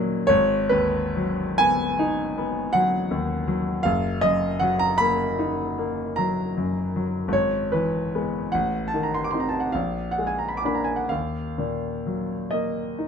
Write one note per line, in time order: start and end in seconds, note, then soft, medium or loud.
0.00 0.26 D#2 medium
0.00 0.14 A#2 medium
0.00 0.32 F#3 medium
0.00 0.31 A#3 medium
0.00 0.32 D#4 medium
0.00 0.29 D#5 loud
0.27 3.80 G#1 medium
0.27 0.70 C#5 loud
0.69 1.44 D#2 medium
0.69 1.59 B4 medium
1.17 1.85 F#3 medium
1.58 2.22 B3 medium
1.58 2.72 G#5 loud
1.99 2.58 D#4 medium
2.38 2.96 B3 soft
2.73 3.32 F#3 medium
2.73 3.84 F#5 loud
3.11 3.69 D#2 soft
3.48 3.84 F#3 soft
3.83 7.29 F#1 medium
3.83 4.21 F5 medium
4.21 4.84 F#2 soft
4.21 4.60 D#5 medium
4.60 5.22 F#3 soft
4.60 4.79 F#5 medium
4.79 4.99 A#5 loud
4.98 5.61 A#3 medium
4.98 6.16 B5 loud
5.39 6.01 D#4 soft
5.78 6.41 A#3 soft
6.16 6.80 F#3 soft
6.16 7.32 A#5 medium
6.57 7.18 F#2 soft
6.96 7.34 F#3 soft
7.28 8.46 G#1 medium
7.33 7.72 C#5 medium
7.72 8.37 E3 soft
7.72 8.52 B4 medium
8.15 8.50 G#3 soft
8.15 8.50 B3 soft
8.52 9.71 A1 medium
8.52 8.88 F#5 medium
8.88 9.03 A5 medium
8.94 9.58 D#3 soft
9.03 9.15 A#5 medium
9.14 9.24 C6 medium
9.24 9.33 D6 medium
9.31 9.70 C4 soft
9.31 9.70 D#4 soft
9.31 9.40 C6 medium
9.40 9.50 A#5 medium
9.49 9.61 A5 medium
9.60 9.73 F#5 medium
9.72 11.05 A#1 soft
9.72 10.11 F5 medium
10.11 10.27 F#5 medium
10.18 10.90 G#3 soft
10.27 10.39 G#5 medium
10.39 10.49 A#5 soft
10.48 10.57 B5 soft
10.57 10.66 D6 medium
10.64 11.06 A#3 soft
10.64 11.07 D4 soft
10.64 10.75 B5 soft
10.75 10.85 A#5 soft
10.84 10.96 G#5 soft
10.96 11.09 F#5 soft
11.09 13.08 D#2 soft
11.09 12.52 F5 medium
11.58 12.33 A#2 soft
12.07 12.80 F#3 soft
12.51 13.08 A#3 soft
12.51 13.08 D#5 medium
12.99 13.08 D#4 soft